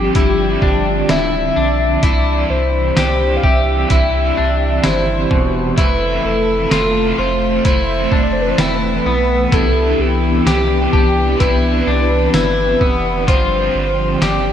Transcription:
Already playing: overdriven electric guitar D3 F3 C4 D4, string machine F3 G3 D4 G4, clean electric guitar G4, soft synth lead G4
0.13 sub bass G1, overdriven electric guitar D3 F3, clean electric guitar E4, string machine G4, kick, closed hi-hat
0.20 overdriven electric guitar C4 D4
0.62 sub bass G1, clean electric guitar D4, kick
1.09 sub bass D1, clean electric guitar E4, soft synth lead E5, snare, closed hi-hat
1.56 sub bass B1, clean electric guitar D4
2.03 sub bass C2, overdriven electric guitar C3 E3 D4, string machine E3 G3 G4, clean electric guitar E4, soft synth lead D5, kick, closed hi-hat
2.50 sub bass C2, soft synth lead C5
2.95 sub bass C2, overdriven electric guitar C3 E3, clean electric guitar G4, snare, closed hi-hat, tambourine
3.00 overdriven electric guitar D4
3.37 soft synth lead F5
3.43 sub bass C2, clean electric guitar G4, soft synth lead E5, kick
3.88 sub bass C2, overdriven electric guitar C3 E3, clean electric guitar E4, soft synth lead E5, kick, closed hi-hat
3.96 overdriven electric guitar D4
4.37 sub bass C2, clean electric guitar D4
4.84 sub bass G1, clean electric guitar E4, soft synth lead C5, snare, closed hi-hat, tambourine
5.31 sub bass E1, clean electric guitar B2, kick
5.77 sub bass F1, overdriven electric guitar F2 C3 E3 A3 C4, string machine A3 A4 E5, clean electric guitar E4, soft synth lead B4, celesta E5, kick, closed hi-hat
6.24 sub bass F1, soft synth lead A4
6.69 sub bass F1, overdriven electric guitar C3 A3, clean electric guitar F4, snare, closed hi-hat, tambourine
6.74 overdriven electric guitar C4
7.18 sub bass F1, clean electric guitar F4, soft synth lead C5
7.65 sub bass F1, overdriven electric guitar E3 A3, clean electric guitar E4, string machine A4, soft synth lead C5, kick, closed hi-hat
7.71 overdriven electric guitar C4
8.12 sub bass F1, clean electric guitar D4, kick
8.23 soft synth lead D5
8.32 soft synth lead C5
8.41 soft synth lead B4
8.50 soft synth lead C5
8.58 sub bass E1, clean electric guitar E4, soft synth lead B4, celesta G5, snare, closed hi-hat, tambourine
9.05 sub bass B1, clean electric guitar B3
9.52 sub bass C2, overdriven electric guitar C3 E3 B3 D4, string machine E3 B3 D4 G4, clean electric guitar E4, soft synth lead A4, kick, closed hi-hat
9.99 sub bass C2, soft synth lead G4
10.45 sub bass C2, overdriven electric guitar C3 E3 B3 D4, clean electric guitar G4, snare, closed hi-hat, tambourine
10.93 sub bass C2, clean electric guitar G4, celesta A5, kick
11.37 sub bass C2, overdriven electric guitar C3 E3, clean electric guitar E4, soft synth lead B4, kick, closed hi-hat
11.43 overdriven electric guitar B3 D4
11.87 sub bass C2, clean electric guitar D4
12.34 sub bass G1, clean electric guitar E4, soft synth lead B4, snare, closed hi-hat, tambourine
12.81 sub bass F1, clean electric guitar B3, celesta E6, kick
13.27 sub bass G1, overdriven electric guitar G2 D3 F3 C4 D4, string machine D3 F3 G3, clean electric guitar F4, soft synth lead C5, kick, closed hi-hat
13.75 sub bass G1
14.21 sub bass G1, overdriven electric guitar D3 F3 C4, clean electric guitar G4, soft synth lead D5, snare, closed hi-hat, tambourine
14.25 overdriven electric guitar D4

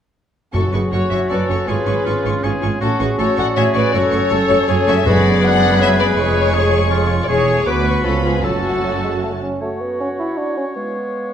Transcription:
0.53 double bass section F#1, cello section F#2, timpani F#2, viola section C#4 F#4, bassoon C#4, french horn section C#4 F#4, flute F#4, clarinet F#4, violin section A4 C#6
0.72 double bass section F#1, cello section F#2, viola section C#4 F#4, flute G#4, violin section B4 C#6
0.91 double bass section F#1, cello section F#2, viola section C#4 F#4, oboe F#4, flute A4, violin section C#5 C#6
1.10 double bass section F#1, cello section F#2, viola section C#4 F#4, flute C#5, violin section E5 C#6
1.29 double bass section F#1, cello section F#2, viola section C#4 F#4, oboe A4, flute B4, violin section D5 C#6
1.48 double bass section F#1, cello section F#2, viola section C#4 F#4, flute A4, violin section C#5 C#6
1.67 double bass section G#1, cello section G#2, viola section C#4 F4, clarinet F4, french horn section F4, oboe G#4, flute G#4, violin section B4 C#6
1.86 double bass section G#1, cello section G#2, viola section C#4 F4, violin section C#6
2.05 double bass section G#1, cello section G#2, viola section C#4 F4, oboe F4, violin section C#6
2.25 double bass section G#1, cello section G#2, viola section C#4 F4, violin section C#6
2.43 double bass section G#1, cello section G#2, viola section C#4 F4, oboe G#4, violin section C#6
2.62 double bass section G#1, cello section G#2, viola section C#4 F4, violin section C#6
2.81 double bass section A1, cello section A2, viola section C#4 F#4, bassoon C#4, french horn section C#4 F#4, oboe F#4, flute F#4, clarinet F#4, violin section A4 C#6
3.00 double bass section A1, cello section A2, viola section C#4 F#4, flute G#4, violin section B4 C#6
3.19 double bass section A1, cello section A2, viola section C#4 F#4, oboe A4, flute A4, violin section C#5 C#6
3.37 double bass section A1, cello section A2, viola section C#4 F#4, flute D5, violin section F#5 C#6
3.55 double bass section A1, cello section A2, viola section C#4 F#4, oboe G#4, flute C#5, violin section E5 C#6
3.74 double bass section A1, cello section A2, viola section C#4 F#4, flute B4, violin section D5 C#6
3.93 double bass section F#1, cello section F#2, viola section A3 F#4, oboe F#4, clarinet A4, flute A4, french horn section A4, violin section C#5 C#6
4.12 double bass section F#1, cello section F#2, viola section A3 F#4, violin section C#6
4.31 double bass section F#1, cello section F#2, viola section A3 F#4, oboe A4, violin section C#6
4.49 double bass section F#1, cello section F#2, viola section A3 F#4, violin section C#6
4.68 double bass section F#1, cello section F#2, viola section A3 F#4, oboe G#4, violin section C#6
4.87 double bass section F#1, cello section F#2, viola section A3 F#4, flute C#5, violin section E5 C#6
5.05 double bass section F#1, timpani F#2, cello section F#2, viola section G#3 G#4, french horn section B3 G#4, bassoon B3, oboe F#4, clarinet G#4, flute B4, violin section D5 B5
5.42 viola section G#3 G#4, oboe D4, flute D5, violin section F#5 B5
5.80 oboe B4, flute C#5, violin section E5
5.99 flute B4, violin section D5
6.16 double bass section F1, cello section F2, bassoon G#3, french horn section G#3, viola section G#3 G#4, flute G#4, violin section C#5 C#6
6.54 oboe G#4
6.91 oboe F4
7.22 violin section D5
7.28 double bass section E1, cello section E2, french horn section G#3 G#4, viola section G#3 G#4, oboe G#4, clarinet G#4, flute G#4, violin section C#5 C#6
7.47 french horn section A3
7.66 double bass section D2, cello section D2, bassoon F#3, viola section B3 F#4, french horn section B3 F#4, flute F#4, oboe B4, clarinet B4, violin section B4 D6
7.86 violin section C#6
8.04 cello section C#2, double bass section C#2, bassoon F3, french horn section B3 F4, viola section C#4 F4, flute F#4, violin section A4 B5
8.24 flute F4, violin section G#4
8.43 double bass section F#1, cello section F#2, bassoon F#3, french horn section A3 F#4, flute C#4, viola section C#4 F#4, violin section F#4 A5, oboe A4, clarinet A4
8.84 bassoon F#3
9.03 bassoon G#3
9.23 bassoon A3
9.42 bassoon C#4
9.61 bassoon A3, clarinet F#4, oboe C#5, flute F#5
9.81 bassoon B3
10.00 bassoon C#4
10.19 bassoon E4
10.38 bassoon D4
10.57 bassoon C#4
10.76 clarinet G#3, bassoon B3, flute F5

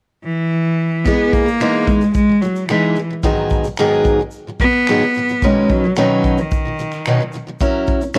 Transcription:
0.24 cello E3
1.04 steel-string acoustic guitar E3 G#3 B3 D#4 G#4, cello B3, kick, shaker
1.32 cello A#3, kick, shaker
1.46 steel-string acoustic guitar E3 G#3, shaker
1.60 steel-string acoustic guitar E3 G#3 B3 D#4 G#4, finger snap, shaker
1.87 cello G#3, kick, shaker
2.01 steel-string acoustic guitar E3 G#3, shaker
2.14 cello G#3, kick, shaker
2.29 steel-string acoustic guitar E3 G#3
2.41 steel-string acoustic guitar E3 G#3, cello F#3, shaker
2.56 shaker
2.69 cello E3, steel-string acoustic guitar E3 G#3 B3 D#4 G#4, finger snap, shaker
2.96 steel-string acoustic guitar E3 G#3, shaker
3.10 steel-string acoustic guitar E3 G#3
3.23 steel-string acoustic guitar G#2 D#3 F#3 B3 D#4 G#4, kick, shaker
3.50 kick, shaker
3.64 steel-string acoustic guitar G#2 D#3 F#3, shaker
3.77 steel-string acoustic guitar G#2 D#3 F#3 B3 D#4 G#4, finger snap, shaker
4.04 kick, shaker
4.19 steel-string acoustic guitar G#2 D#3
4.31 shaker
4.47 steel-string acoustic guitar G#2 D#3 F#3
4.60 steel-string acoustic guitar G#2 D#3 F#3, cello B3, kick, shaker
4.73 finger snap
4.87 steel-string acoustic guitar G#2 D#3 F#3 B3 D#4 G#4, finger snap, shaker
5.03 steel-string acoustic guitar G#2 D#3 F#3
5.14 steel-string acoustic guitar G#2 D#3, shaker
5.19 steel-string acoustic guitar F#3
5.29 steel-string acoustic guitar G#2 D#3 F#3, shaker
5.42 steel-string acoustic guitar B2 D#3 F#3 C#4 D#4 B4, cello G#3, kick, shaker
5.69 cello F#3, kick, shaker
5.84 steel-string acoustic guitar B2 D#3 F#3
5.96 steel-string acoustic guitar B2 D#3 F#3 C#4 D#4 B4, cello F#3, finger snap, shaker
6.24 kick, shaker
6.38 steel-string acoustic guitar B2 D#3, cello D#3, shaker
6.51 kick, shaker
6.65 steel-string acoustic guitar B2 D#3 F#3
6.79 steel-string acoustic guitar B2 D#3 F#3, shaker
6.92 finger snap, shaker
7.06 steel-string acoustic guitar B2 D#3 F#3 C#4 D#4 B4, finger snap, shaker
7.20 steel-string acoustic guitar B2 D#3 F#3
7.32 steel-string acoustic guitar B2 D#3, shaker
7.36 steel-string acoustic guitar F#3
7.47 steel-string acoustic guitar B2 D#3 F#3
7.60 steel-string acoustic guitar F#3 C#4 E4 A#4, kick, shaker
7.87 kick, shaker
8.01 steel-string acoustic guitar F#3 C#4, shaker
8.14 steel-string acoustic guitar F#3 C#4, finger snap, shaker

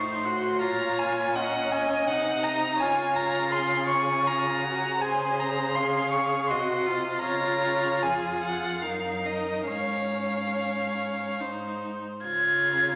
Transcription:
Already playing: cello A2, viola D#4, violin C5 C6
0.25 viola F#4
0.60 cello A#2, viola F4, violin C#5 A#5
0.99 violin G#5
1.35 viola C#4, violin D#5 F#5
1.71 violin G#5
2.08 cello C3, viola D#4, violin F#5
2.43 violin A#5
2.78 cello C#3, violin C#5 G#5
2.82 viola F4
3.16 violin A#5
3.49 violin G#4 C6
3.89 violin C#6
4.26 viola F4, violin A#5
4.64 viola F#4
4.99 cello C#3, viola G#4, violin C5 G#5
5.39 violin A#5
5.75 viola G#4, violin F5 C6
6.11 violin C#6
6.47 cello C3, viola F#4, violin D#5 C6
6.87 viola F4
7.22 cello C#3, violin C#5 A#5
8.02 cello F2, violin G#4 G#5
8.44 violin F#5
8.82 cello F#2, viola D#4, violin A#4 F5
9.26 violin D#5
9.68 cello G#2, viola C#4, violin C#5 F5
11.40 cello G#2, viola D#4, violin C5
12.24 cello C#3, viola F4, violin G#6

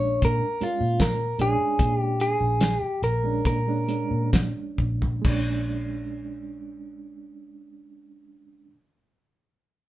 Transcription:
Already playing: fingered electric bass A#1, reed electric piano G#3 C#4 D4, clean electric guitar C#5
0.22 fingered electric bass A#2, clean electric guitar A#4, kick, closed hi-hat
0.61 reed electric piano G#3 C#4 F4, clean electric guitar F4, muted fingered electric bass stroke, closed hi-hat
0.81 fingered electric bass A#2
1.00 clean electric guitar A#4, kick, snare, closed hi-hat, tambourine
1.39 fingered electric bass A#1, reed electric piano G#3 C#4 D4, clean electric guitar G#4, closed hi-hat
1.79 fingered electric bass A#2, kick, closed hi-hat
1.99 clean electric guitar G4
2.20 clean electric guitar G#4, closed hi-hat
2.41 fingered electric bass A#1
2.61 snare, closed hi-hat, tambourine
2.80 clean electric guitar G4, muted fingered electric bass stroke
3.02 fingered electric bass A#1, clean electric guitar A#4, closed hi-hat
3.24 reed electric piano G#3 C#4 D4
3.45 fingered electric bass A#2, clean electric guitar A#4, kick, closed hi-hat
3.67 reed electric piano G#3 C#4 D4
3.88 reed electric piano G#3 C#4 D4, closed hi-hat
4.11 fingered electric bass A#2
4.33 kick, snare, closed hi-hat, tambourine
4.78 fingered electric bass A#1, kick
5.02 floor tom
5.21 fingered electric bass A#1, reed electric piano G#3 C#4, kick, crash
5.28 reed electric piano D4

